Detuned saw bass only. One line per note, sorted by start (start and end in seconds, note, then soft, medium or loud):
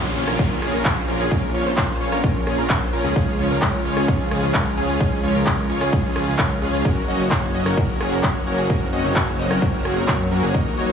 0.00 0.14 A#1 medium
0.16 0.25 A#1 loud
0.27 0.37 A#1 loud
0.39 0.60 A#1 loud
0.62 0.71 A#1 loud
0.74 0.83 A#1 medium
0.85 1.06 A#1 loud
1.08 1.17 A#1 loud
1.20 1.29 A#1 medium
1.31 1.52 A#1 loud
1.54 1.64 A#1 loud
1.66 1.75 A#1 loud
1.78 1.98 A#1 loud
2.01 2.10 A#1 loud
2.12 2.21 A#1 loud
2.24 2.44 A#1 medium
2.47 2.56 A#1 loud
2.58 2.67 A#1 medium
2.70 2.91 A#1 loud
2.93 3.02 A#1 loud
3.04 3.14 C#2 medium
3.16 3.37 C#2 loud
3.39 3.48 C#2 loud
3.51 3.60 C#2 medium
3.62 3.83 C#2 medium
3.85 3.94 C#2 loud
3.97 4.06 C#2 loud
4.08 4.29 C#2 loud
4.31 4.41 C#2 loud
4.43 4.52 C#2 medium
4.54 4.75 C#2 medium
4.77 4.87 C#2 loud
4.89 4.98 C#2 loud
5.01 5.21 C#2 loud
5.24 5.33 C#2 medium
5.35 5.44 C#2 loud
5.47 5.67 C#2 loud
5.70 5.79 C#2 loud
5.81 5.91 C#2 loud
5.93 6.14 C#2 loud
6.16 6.25 C#2 loud
6.27 6.37 C#2 medium
6.39 6.60 C#2 medium
6.62 6.71 C#2 loud
6.73 6.83 C#2 loud
6.85 7.06 F#1 loud
7.08 7.17 F#1 medium
7.20 7.29 F#1 medium
7.31 7.52 F#1 loud
7.54 7.64 F#1 loud
7.66 7.75 F#1 loud
7.77 7.98 F#1 loud
8.00 8.10 F#1 loud
8.12 8.21 F#1 loud
8.24 8.44 F#1 loud
8.47 8.56 F#1 loud
8.58 8.67 F#1 loud
8.70 8.91 F#1 loud
8.93 9.02 F#1 loud
9.04 9.14 F#1 loud
9.16 9.37 F#1 loud
9.39 9.48 F#1 loud
9.50 9.60 F#1 loud
9.62 9.83 F#1 medium
9.85 9.94 F#1 loud
9.97 10.06 F#1 medium
10.08 10.29 F#2 loud
10.31 10.41 F#2 loud
10.43 10.52 F#1 loud
10.54 10.75 D#1 medium
10.77 10.87 D#1 loud